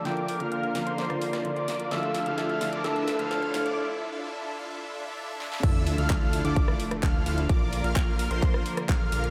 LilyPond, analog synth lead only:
\new Staff \with { instrumentName = "Analog synth lead" } { \time 4/4 \key d \minor \tempo 4 = 129 d'''8. f'''4 c'''8. c'''8 r16 d'''8. | e'''8. f'''4 d'''16 e'''8. f'''4 d'''16 | r1 | e'''8. f'''4 d'''8. r8 f'''8 f'''16 r16 |
d'''8. f'''4 c'''8. r8 f'''8 f'''16 r16 | }